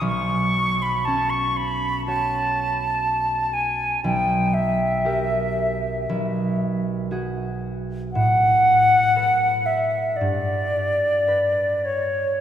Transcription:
<<
  \new Staff \with { instrumentName = "Flute" } { \time 4/4 \key b \minor \tempo 4 = 59 cis'''8. b''16 a''16 cis'''16 b''8 a''4. gis''8 | g''8 e''2 r4. | fis''4. e''8 d''4. cis''8 | }
  \new Staff \with { instrumentName = "Harp" } { \time 4/4 \key b \minor <b,, cis'>4 cis'4 <fis' cis''>2 | b,,4 <g' ais'>4 b,,4 <fis' gis'>4 | a,4 <a' b'>4 g,4 b'4 | }
>>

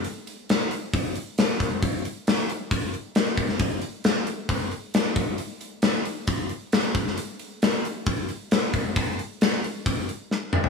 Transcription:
\new DrumStaff \with { instrumentName = "Drums" } \drummode { \time 4/4 \tempo 4 = 134 hho8 hho8 <hho sn>8 hho8 <hho bd>8 hho8 <hho sn>8 <hho bd>8 | <hho bd>8 hho8 <hho sn>8 hho8 <hho bd>8 hho8 <hho sn>8 <hho bd>16 sn16 | <hho bd>8 hho8 <hho sn>8 hho8 <hho bd>8 hho8 <hho sn>8 <hho bd>8 | hho8 hho8 <hho sn>8 hho8 <hho bd>8 hho8 <hho sn>8 <hho bd>16 sn16 |
hho8 hho8 <hho sn>8 hho8 <hho bd>8 hho8 <hho sn>8 <hho bd>8 | <hho bd>8 hho8 <hho sn>8 hho8 <hho bd>8 hho8 sn8 toml16 tomfh16 | }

